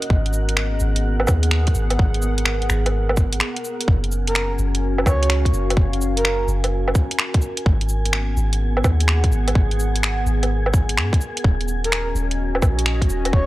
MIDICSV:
0, 0, Header, 1, 6, 480
1, 0, Start_track
1, 0, Tempo, 472441
1, 106, Time_signature, 4, 2, 24, 8
1, 13678, End_track
2, 0, Start_track
2, 0, Title_t, "Synth texture"
2, 0, Program_c, 0, 99
2, 0, Note_on_c, 0, 78, 84
2, 3953, Note_on_c, 0, 80, 84
2, 3962, Note_off_c, 0, 78, 0
2, 13678, Note_off_c, 0, 80, 0
2, 13678, End_track
3, 0, Start_track
3, 0, Title_t, "Soft synth lead"
3, 0, Program_c, 1, 80
3, 4341, Note_on_c, 1, 70, 93
3, 4591, Note_off_c, 1, 70, 0
3, 5140, Note_on_c, 1, 73, 96
3, 5399, Note_off_c, 1, 73, 0
3, 6259, Note_on_c, 1, 70, 96
3, 6583, Note_off_c, 1, 70, 0
3, 12032, Note_on_c, 1, 70, 97
3, 12277, Note_off_c, 1, 70, 0
3, 13541, Note_on_c, 1, 73, 98
3, 13678, Note_off_c, 1, 73, 0
3, 13678, End_track
4, 0, Start_track
4, 0, Title_t, "Analog synth pad"
4, 0, Program_c, 2, 89
4, 0, Note_on_c, 2, 61, 72
4, 0, Note_on_c, 2, 66, 74
4, 0, Note_on_c, 2, 70, 74
4, 0, Note_on_c, 2, 75, 70
4, 107, Note_on_c, 2, 59, 93
4, 414, Note_on_c, 2, 68, 93
4, 1021, Note_on_c, 2, 78, 93
4, 1024, Note_off_c, 2, 75, 0
4, 1269, Note_off_c, 2, 66, 0
4, 1675, Note_off_c, 2, 61, 0
4, 3942, Note_on_c, 2, 61, 90
4, 3946, Note_off_c, 2, 59, 0
4, 3946, Note_off_c, 2, 78, 0
4, 4267, Note_on_c, 2, 66, 98
4, 4870, Note_on_c, 2, 77, 76
4, 5487, Note_off_c, 2, 68, 0
4, 7783, Note_off_c, 2, 77, 0
4, 7797, Note_on_c, 2, 59, 78
4, 8214, Note_on_c, 2, 68, 73
4, 8281, Note_on_c, 2, 78, 93
4, 8634, Note_off_c, 2, 66, 0
4, 8996, Note_off_c, 2, 61, 0
4, 11617, Note_on_c, 2, 61, 90
4, 11631, Note_off_c, 2, 59, 0
4, 11855, Note_on_c, 2, 66, 83
4, 12050, Note_on_c, 2, 75, 73
4, 12346, Note_off_c, 2, 78, 0
4, 12644, Note_off_c, 2, 68, 0
4, 13678, Note_off_c, 2, 61, 0
4, 13678, Note_off_c, 2, 66, 0
4, 13678, Note_off_c, 2, 70, 0
4, 13678, Note_off_c, 2, 75, 0
4, 13678, End_track
5, 0, Start_track
5, 0, Title_t, "808-style bass"
5, 0, Program_c, 3, 38
5, 101, Note_on_c, 3, 32, 100
5, 813, Note_off_c, 3, 32, 0
5, 823, Note_on_c, 3, 32, 101
5, 1294, Note_off_c, 3, 32, 0
5, 1303, Note_on_c, 3, 39, 87
5, 1774, Note_off_c, 3, 39, 0
5, 1785, Note_on_c, 3, 32, 101
5, 2012, Note_off_c, 3, 32, 0
5, 2021, Note_on_c, 3, 32, 95
5, 2733, Note_off_c, 3, 32, 0
5, 2745, Note_on_c, 3, 32, 103
5, 3465, Note_off_c, 3, 32, 0
5, 3942, Note_on_c, 3, 30, 97
5, 4653, Note_off_c, 3, 30, 0
5, 4664, Note_on_c, 3, 30, 106
5, 5134, Note_off_c, 3, 30, 0
5, 5141, Note_on_c, 3, 37, 86
5, 5613, Note_off_c, 3, 37, 0
5, 5623, Note_on_c, 3, 30, 102
5, 5851, Note_off_c, 3, 30, 0
5, 5860, Note_on_c, 3, 30, 103
5, 6572, Note_off_c, 3, 30, 0
5, 6582, Note_on_c, 3, 30, 98
5, 7053, Note_off_c, 3, 30, 0
5, 7782, Note_on_c, 3, 32, 101
5, 8493, Note_off_c, 3, 32, 0
5, 8501, Note_on_c, 3, 32, 101
5, 8973, Note_off_c, 3, 32, 0
5, 8982, Note_on_c, 3, 39, 88
5, 9454, Note_off_c, 3, 39, 0
5, 9461, Note_on_c, 3, 32, 101
5, 9691, Note_off_c, 3, 32, 0
5, 9706, Note_on_c, 3, 32, 101
5, 10415, Note_off_c, 3, 32, 0
5, 10427, Note_on_c, 3, 32, 103
5, 11145, Note_on_c, 3, 44, 83
5, 11160, Note_off_c, 3, 32, 0
5, 11292, Note_off_c, 3, 44, 0
5, 11626, Note_on_c, 3, 27, 102
5, 12336, Note_off_c, 3, 27, 0
5, 12346, Note_on_c, 3, 27, 96
5, 12815, Note_off_c, 3, 27, 0
5, 12824, Note_on_c, 3, 34, 87
5, 13294, Note_off_c, 3, 34, 0
5, 13308, Note_on_c, 3, 27, 105
5, 13534, Note_off_c, 3, 27, 0
5, 13545, Note_on_c, 3, 27, 98
5, 13678, Note_off_c, 3, 27, 0
5, 13678, End_track
6, 0, Start_track
6, 0, Title_t, "Drums"
6, 22, Note_on_c, 9, 42, 52
6, 102, Note_on_c, 9, 36, 116
6, 124, Note_off_c, 9, 42, 0
6, 204, Note_off_c, 9, 36, 0
6, 262, Note_on_c, 9, 42, 32
6, 338, Note_on_c, 9, 69, 75
6, 364, Note_off_c, 9, 42, 0
6, 440, Note_off_c, 9, 69, 0
6, 495, Note_on_c, 9, 42, 55
6, 576, Note_on_c, 9, 26, 101
6, 597, Note_off_c, 9, 42, 0
6, 678, Note_off_c, 9, 26, 0
6, 812, Note_on_c, 9, 69, 66
6, 914, Note_off_c, 9, 69, 0
6, 975, Note_on_c, 9, 42, 52
6, 1077, Note_off_c, 9, 42, 0
6, 1217, Note_on_c, 9, 77, 57
6, 1293, Note_off_c, 9, 77, 0
6, 1293, Note_on_c, 9, 69, 73
6, 1293, Note_on_c, 9, 77, 62
6, 1303, Note_on_c, 9, 36, 99
6, 1394, Note_off_c, 9, 69, 0
6, 1394, Note_off_c, 9, 77, 0
6, 1405, Note_off_c, 9, 36, 0
6, 1452, Note_on_c, 9, 42, 53
6, 1536, Note_on_c, 9, 26, 98
6, 1554, Note_off_c, 9, 42, 0
6, 1638, Note_off_c, 9, 26, 0
6, 1695, Note_on_c, 9, 42, 47
6, 1703, Note_on_c, 9, 36, 57
6, 1777, Note_on_c, 9, 69, 68
6, 1797, Note_off_c, 9, 42, 0
6, 1804, Note_off_c, 9, 36, 0
6, 1879, Note_off_c, 9, 69, 0
6, 1934, Note_on_c, 9, 42, 55
6, 1934, Note_on_c, 9, 77, 38
6, 2023, Note_on_c, 9, 36, 114
6, 2036, Note_off_c, 9, 42, 0
6, 2036, Note_off_c, 9, 77, 0
6, 2124, Note_off_c, 9, 36, 0
6, 2177, Note_on_c, 9, 42, 31
6, 2257, Note_on_c, 9, 69, 79
6, 2279, Note_off_c, 9, 42, 0
6, 2359, Note_off_c, 9, 69, 0
6, 2416, Note_on_c, 9, 42, 55
6, 2493, Note_on_c, 9, 26, 103
6, 2518, Note_off_c, 9, 42, 0
6, 2595, Note_off_c, 9, 26, 0
6, 2660, Note_on_c, 9, 42, 33
6, 2740, Note_on_c, 9, 26, 57
6, 2740, Note_on_c, 9, 69, 65
6, 2762, Note_off_c, 9, 42, 0
6, 2841, Note_off_c, 9, 26, 0
6, 2841, Note_off_c, 9, 69, 0
6, 2906, Note_on_c, 9, 42, 54
6, 2906, Note_on_c, 9, 77, 37
6, 3008, Note_off_c, 9, 42, 0
6, 3008, Note_off_c, 9, 77, 0
6, 3144, Note_on_c, 9, 77, 57
6, 3219, Note_on_c, 9, 69, 74
6, 3222, Note_on_c, 9, 36, 96
6, 3245, Note_off_c, 9, 77, 0
6, 3320, Note_off_c, 9, 69, 0
6, 3324, Note_off_c, 9, 36, 0
6, 3379, Note_on_c, 9, 42, 54
6, 3455, Note_on_c, 9, 26, 102
6, 3480, Note_off_c, 9, 42, 0
6, 3557, Note_off_c, 9, 26, 0
6, 3622, Note_on_c, 9, 42, 46
6, 3706, Note_on_c, 9, 69, 68
6, 3724, Note_off_c, 9, 42, 0
6, 3808, Note_off_c, 9, 69, 0
6, 3867, Note_on_c, 9, 42, 56
6, 3941, Note_on_c, 9, 36, 125
6, 3969, Note_off_c, 9, 42, 0
6, 4043, Note_off_c, 9, 36, 0
6, 4103, Note_on_c, 9, 42, 33
6, 4185, Note_on_c, 9, 69, 77
6, 4205, Note_off_c, 9, 42, 0
6, 4286, Note_off_c, 9, 69, 0
6, 4343, Note_on_c, 9, 42, 58
6, 4421, Note_on_c, 9, 26, 105
6, 4445, Note_off_c, 9, 42, 0
6, 4523, Note_off_c, 9, 26, 0
6, 4662, Note_on_c, 9, 69, 65
6, 4764, Note_off_c, 9, 69, 0
6, 4824, Note_on_c, 9, 42, 56
6, 4926, Note_off_c, 9, 42, 0
6, 5065, Note_on_c, 9, 77, 61
6, 5142, Note_on_c, 9, 36, 104
6, 5150, Note_off_c, 9, 77, 0
6, 5150, Note_on_c, 9, 69, 69
6, 5150, Note_on_c, 9, 77, 65
6, 5243, Note_off_c, 9, 36, 0
6, 5252, Note_off_c, 9, 69, 0
6, 5252, Note_off_c, 9, 77, 0
6, 5310, Note_on_c, 9, 42, 57
6, 5383, Note_on_c, 9, 26, 104
6, 5412, Note_off_c, 9, 42, 0
6, 5484, Note_off_c, 9, 26, 0
6, 5541, Note_on_c, 9, 36, 59
6, 5547, Note_on_c, 9, 42, 49
6, 5628, Note_on_c, 9, 69, 65
6, 5643, Note_off_c, 9, 36, 0
6, 5648, Note_off_c, 9, 42, 0
6, 5730, Note_off_c, 9, 69, 0
6, 5796, Note_on_c, 9, 42, 59
6, 5796, Note_on_c, 9, 77, 38
6, 5861, Note_on_c, 9, 36, 121
6, 5897, Note_off_c, 9, 42, 0
6, 5897, Note_off_c, 9, 77, 0
6, 5962, Note_off_c, 9, 36, 0
6, 6029, Note_on_c, 9, 42, 34
6, 6112, Note_on_c, 9, 69, 75
6, 6131, Note_off_c, 9, 42, 0
6, 6213, Note_off_c, 9, 69, 0
6, 6270, Note_on_c, 9, 42, 59
6, 6348, Note_on_c, 9, 26, 112
6, 6372, Note_off_c, 9, 42, 0
6, 6450, Note_off_c, 9, 26, 0
6, 6587, Note_on_c, 9, 69, 60
6, 6689, Note_off_c, 9, 69, 0
6, 6746, Note_on_c, 9, 42, 57
6, 6746, Note_on_c, 9, 77, 37
6, 6847, Note_off_c, 9, 42, 0
6, 6847, Note_off_c, 9, 77, 0
6, 6988, Note_on_c, 9, 77, 57
6, 7063, Note_on_c, 9, 36, 106
6, 7063, Note_on_c, 9, 69, 70
6, 7089, Note_off_c, 9, 77, 0
6, 7164, Note_off_c, 9, 36, 0
6, 7165, Note_off_c, 9, 69, 0
6, 7225, Note_on_c, 9, 42, 57
6, 7301, Note_on_c, 9, 26, 111
6, 7327, Note_off_c, 9, 42, 0
6, 7402, Note_off_c, 9, 26, 0
6, 7461, Note_on_c, 9, 42, 48
6, 7462, Note_on_c, 9, 36, 112
6, 7538, Note_on_c, 9, 69, 63
6, 7562, Note_off_c, 9, 42, 0
6, 7564, Note_off_c, 9, 36, 0
6, 7640, Note_off_c, 9, 69, 0
6, 7693, Note_on_c, 9, 42, 60
6, 7783, Note_on_c, 9, 36, 127
6, 7795, Note_off_c, 9, 42, 0
6, 7885, Note_off_c, 9, 36, 0
6, 7937, Note_on_c, 9, 42, 31
6, 8017, Note_on_c, 9, 69, 72
6, 8038, Note_off_c, 9, 42, 0
6, 8118, Note_off_c, 9, 69, 0
6, 8184, Note_on_c, 9, 42, 59
6, 8260, Note_on_c, 9, 26, 111
6, 8286, Note_off_c, 9, 42, 0
6, 8361, Note_off_c, 9, 26, 0
6, 8505, Note_on_c, 9, 69, 58
6, 8607, Note_off_c, 9, 69, 0
6, 8664, Note_on_c, 9, 42, 55
6, 8766, Note_off_c, 9, 42, 0
6, 8909, Note_on_c, 9, 77, 54
6, 8985, Note_on_c, 9, 36, 114
6, 8986, Note_off_c, 9, 77, 0
6, 8986, Note_on_c, 9, 69, 67
6, 8986, Note_on_c, 9, 77, 57
6, 9086, Note_off_c, 9, 36, 0
6, 9088, Note_off_c, 9, 69, 0
6, 9088, Note_off_c, 9, 77, 0
6, 9149, Note_on_c, 9, 42, 55
6, 9224, Note_on_c, 9, 26, 110
6, 9250, Note_off_c, 9, 42, 0
6, 9325, Note_off_c, 9, 26, 0
6, 9386, Note_on_c, 9, 36, 66
6, 9386, Note_on_c, 9, 42, 46
6, 9473, Note_on_c, 9, 69, 59
6, 9487, Note_off_c, 9, 36, 0
6, 9487, Note_off_c, 9, 42, 0
6, 9574, Note_off_c, 9, 69, 0
6, 9628, Note_on_c, 9, 42, 60
6, 9628, Note_on_c, 9, 77, 37
6, 9706, Note_on_c, 9, 36, 127
6, 9729, Note_off_c, 9, 42, 0
6, 9729, Note_off_c, 9, 77, 0
6, 9808, Note_off_c, 9, 36, 0
6, 9869, Note_on_c, 9, 42, 31
6, 9954, Note_on_c, 9, 69, 70
6, 9970, Note_off_c, 9, 42, 0
6, 10056, Note_off_c, 9, 69, 0
6, 10115, Note_on_c, 9, 42, 54
6, 10193, Note_on_c, 9, 26, 109
6, 10217, Note_off_c, 9, 42, 0
6, 10294, Note_off_c, 9, 26, 0
6, 10433, Note_on_c, 9, 69, 61
6, 10535, Note_off_c, 9, 69, 0
6, 10596, Note_on_c, 9, 42, 55
6, 10596, Note_on_c, 9, 77, 33
6, 10697, Note_off_c, 9, 42, 0
6, 10697, Note_off_c, 9, 77, 0
6, 10832, Note_on_c, 9, 77, 53
6, 10907, Note_on_c, 9, 36, 113
6, 10908, Note_on_c, 9, 69, 70
6, 10934, Note_off_c, 9, 77, 0
6, 11009, Note_off_c, 9, 36, 0
6, 11010, Note_off_c, 9, 69, 0
6, 11066, Note_on_c, 9, 42, 55
6, 11150, Note_on_c, 9, 26, 112
6, 11168, Note_off_c, 9, 42, 0
6, 11252, Note_off_c, 9, 26, 0
6, 11306, Note_on_c, 9, 36, 106
6, 11318, Note_on_c, 9, 42, 48
6, 11391, Note_on_c, 9, 69, 64
6, 11408, Note_off_c, 9, 36, 0
6, 11420, Note_off_c, 9, 42, 0
6, 11493, Note_off_c, 9, 69, 0
6, 11551, Note_on_c, 9, 42, 57
6, 11627, Note_on_c, 9, 36, 122
6, 11653, Note_off_c, 9, 42, 0
6, 11728, Note_off_c, 9, 36, 0
6, 11792, Note_on_c, 9, 42, 28
6, 11870, Note_on_c, 9, 69, 75
6, 11893, Note_off_c, 9, 42, 0
6, 11971, Note_off_c, 9, 69, 0
6, 12034, Note_on_c, 9, 42, 53
6, 12112, Note_on_c, 9, 26, 110
6, 12135, Note_off_c, 9, 42, 0
6, 12214, Note_off_c, 9, 26, 0
6, 12353, Note_on_c, 9, 69, 61
6, 12455, Note_off_c, 9, 69, 0
6, 12509, Note_on_c, 9, 42, 51
6, 12610, Note_off_c, 9, 42, 0
6, 12751, Note_on_c, 9, 77, 52
6, 12825, Note_on_c, 9, 36, 107
6, 12826, Note_off_c, 9, 77, 0
6, 12826, Note_on_c, 9, 69, 69
6, 12826, Note_on_c, 9, 77, 56
6, 12927, Note_off_c, 9, 36, 0
6, 12928, Note_off_c, 9, 69, 0
6, 12928, Note_off_c, 9, 77, 0
6, 12991, Note_on_c, 9, 42, 52
6, 13064, Note_on_c, 9, 26, 106
6, 13093, Note_off_c, 9, 42, 0
6, 13166, Note_off_c, 9, 26, 0
6, 13224, Note_on_c, 9, 36, 61
6, 13228, Note_on_c, 9, 42, 44
6, 13307, Note_on_c, 9, 69, 68
6, 13326, Note_off_c, 9, 36, 0
6, 13330, Note_off_c, 9, 42, 0
6, 13408, Note_off_c, 9, 69, 0
6, 13465, Note_on_c, 9, 42, 52
6, 13465, Note_on_c, 9, 77, 34
6, 13545, Note_on_c, 9, 36, 119
6, 13567, Note_off_c, 9, 42, 0
6, 13567, Note_off_c, 9, 77, 0
6, 13646, Note_off_c, 9, 36, 0
6, 13678, End_track
0, 0, End_of_file